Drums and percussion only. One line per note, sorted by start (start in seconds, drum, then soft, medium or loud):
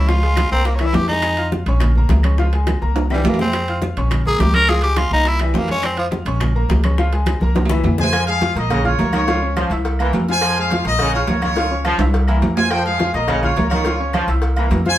0.09 high bongo medium
0.09 high conga soft
0.23 high conga soft
0.23 high timbale medium
0.36 high bongo medium
0.36 high conga medium
0.36 high timbale loud
0.36 low timbale medium
0.36 claves medium
0.51 high bongo soft
0.51 high conga soft
0.65 high bongo medium
0.65 high conga soft
0.65 high timbale medium
0.79 high bongo soft
0.79 high conga soft
0.79 high timbale medium
0.79 claves medium
0.93 high bongo medium
0.93 low bongo medium
0.93 high conga medium
0.93 low timbale medium
1.08 high bongo soft
1.08 high conga medium
1.08 high timbale medium
1.22 high bongo medium
1.22 high conga soft
1.22 high timbale loud
1.22 claves medium
1.37 high conga soft
1.37 high timbale medium
1.52 high bongo medium
1.52 high conga medium
1.52 low timbale medium
1.66 high conga soft
1.66 high timbale medium
1.80 high bongo medium
1.80 high conga soft
1.80 low conga medium
1.80 high timbale medium
1.80 claves medium
1.96 high conga soft
1.96 low conga medium
2.09 high bongo medium
2.09 low bongo medium
2.09 high conga medium
2.09 high timbale medium
2.09 low timbale medium
2.23 high conga medium
2.23 high timbale medium
2.23 claves medium
2.38 high bongo medium
2.38 high conga soft
2.53 high conga soft
2.53 high timbale medium
2.67 high bongo medium
2.67 high conga medium
2.67 high timbale loud
2.67 low timbale medium
2.67 claves medium
2.82 high bongo soft
2.82 high conga soft
2.96 high bongo medium
2.96 high conga soft
2.96 high timbale loud
3.10 low bongo medium
3.10 high conga soft
3.10 claves medium
3.15 high timbale medium
3.24 low bongo medium
3.24 high conga medium
3.24 low timbale medium
3.34 low timbale medium
3.39 low bongo loud
3.44 low timbale medium
3.53 high bongo medium
3.53 high conga soft
3.53 high timbale loud
3.53 claves medium
3.67 high conga soft
3.67 high timbale medium
3.82 high bongo medium
3.82 high conga medium
3.82 low timbale medium
3.96 high conga soft
3.96 high timbale medium
4.10 high bongo medium
4.10 high conga soft
4.10 low conga medium
4.10 high timbale medium
4.10 claves medium
4.26 high conga soft
4.26 low conga medium
4.39 high bongo medium
4.39 low bongo medium
4.39 high conga loud
4.39 high timbale medium
4.39 low timbale medium
4.53 high conga medium
4.53 high timbale medium
4.53 claves medium
4.69 high bongo medium
4.82 high conga soft
4.82 high timbale medium
4.96 high bongo medium
4.96 high conga medium
4.96 high timbale loud
4.96 low timbale medium
4.96 claves medium
5.11 high bongo soft
5.11 high conga soft
5.25 high bongo medium
5.25 high conga soft
5.25 high timbale medium
5.39 high bongo soft
5.39 high conga soft
5.39 high timbale medium
5.39 claves medium
5.54 high bongo medium
5.54 low bongo medium
5.54 high conga loud
5.54 low timbale medium
5.68 high bongo soft
5.68 high conga medium
5.68 high timbale medium
5.83 high bongo medium
5.83 high conga soft
5.83 high timbale loud
5.83 claves medium
5.97 high conga soft
5.97 high timbale medium
6.11 high bongo medium
6.11 high conga loud
6.11 low timbale medium
6.26 high conga soft
6.26 high timbale medium
6.40 high bongo medium
6.40 high conga soft
6.40 low conga medium
6.40 high timbale medium
6.40 claves medium
6.56 high conga soft
6.70 high bongo medium
6.70 low bongo medium
6.70 high conga medium
6.70 high timbale medium
6.70 low timbale medium
6.84 high conga medium
6.84 high timbale medium
6.84 claves medium
6.98 high bongo medium
6.98 high conga soft
7.12 high conga soft
7.12 high timbale medium
7.26 high bongo medium
7.26 high conga loud
7.26 high timbale loud
7.26 low timbale medium
7.26 claves medium
7.41 high bongo soft
7.41 high conga medium
7.55 high bongo medium
7.55 high conga loud
7.55 high timbale medium
7.66 high bongo loud
7.66 low timbale medium
7.70 low conga medium
7.70 claves medium
7.84 low bongo medium
7.84 low conga medium
7.84 low timbale medium
7.98 low bongo medium
7.98 low conga medium
8.04 low timbale medium
8.13 cowbell loud
8.13 high conga soft
8.13 low agogo loud
8.13 claves medium
8.27 high conga soft
8.27 low agogo medium
8.41 cowbell medium
8.41 high conga medium
8.41 low timbale medium
8.56 cowbell medium
8.56 high conga soft
8.70 cowbell loud
8.70 high conga soft
8.70 low conga medium
8.70 low agogo loud
8.70 claves medium
8.84 high conga soft
8.84 low conga medium
8.84 low agogo medium
8.99 cowbell medium
8.99 high conga medium
8.99 low timbale medium
9.13 cowbell medium
9.13 high conga medium
9.13 low agogo loud
9.13 claves medium
9.28 cowbell loud
9.28 high conga soft
9.28 low agogo medium
9.42 high conga soft
9.57 cowbell medium
9.57 high conga medium
9.57 low timbale medium
9.57 low agogo loud
9.57 claves medium
9.70 cowbell medium
9.70 high conga soft
9.85 cowbell loud
9.85 high conga soft
9.85 low agogo medium
9.99 high conga soft
9.99 low agogo loud
9.99 claves medium
10.13 cowbell medium
10.13 high conga medium
10.13 low timbale medium
10.28 low agogo medium
10.41 cowbell loud
10.41 high conga soft
10.41 low agogo loud
10.41 claves medium
10.56 high conga soft
10.56 low agogo medium
10.70 cowbell medium
10.70 high conga medium
10.70 low timbale medium
10.85 cowbell medium
10.85 high conga soft
10.99 cowbell loud
10.99 high conga soft
10.99 low conga medium
10.99 low agogo loud
10.99 claves medium
11.14 high conga soft
11.14 low agogo medium
11.27 cowbell medium
11.27 high conga loud
11.27 low timbale medium
11.42 cowbell medium
11.42 high conga medium
11.42 low agogo loud
11.42 claves medium
11.56 cowbell loud
11.56 low agogo medium
11.73 high conga soft
11.85 cowbell medium
11.85 high conga medium
11.85 low timbale medium
11.85 low agogo loud
11.85 claves medium
11.99 cowbell medium
11.99 high timbale medium
12.14 cowbell loud
12.14 high conga soft
12.14 low agogo medium
12.28 high conga soft
12.28 low agogo medium
12.28 claves medium
12.42 cowbell medium
12.42 high conga medium
12.42 low timbale medium
12.57 low timbale medium
12.57 low agogo medium
12.70 cowbell loud
12.70 high conga soft
12.70 low agogo loud
12.70 claves medium
12.86 high conga soft
12.86 low agogo medium
12.99 cowbell medium
12.99 high conga medium
12.99 low timbale medium
13.14 cowbell medium
13.14 high conga soft
13.28 cowbell loud
13.28 high conga soft
13.28 low conga medium
13.28 low agogo loud
13.28 claves medium
13.43 high conga soft
13.43 low conga medium
13.43 low agogo medium
13.56 cowbell medium
13.56 high conga medium
13.56 low timbale medium
13.71 cowbell medium
13.71 high conga medium
13.71 low agogo loud
13.71 claves medium
13.85 cowbell loud
13.85 high conga soft
13.85 low agogo medium
14.00 high conga soft
14.13 cowbell medium
14.13 high conga medium
14.13 low timbale medium
14.13 low agogo loud
14.13 claves medium
14.28 cowbell medium
14.28 high conga soft
14.42 cowbell loud
14.42 high conga soft
14.42 low agogo medium
14.56 high conga soft
14.56 low agogo loud
14.56 claves medium
14.70 cowbell medium
14.70 high conga loud
14.70 low timbale medium
14.85 high conga medium
14.85 low agogo medium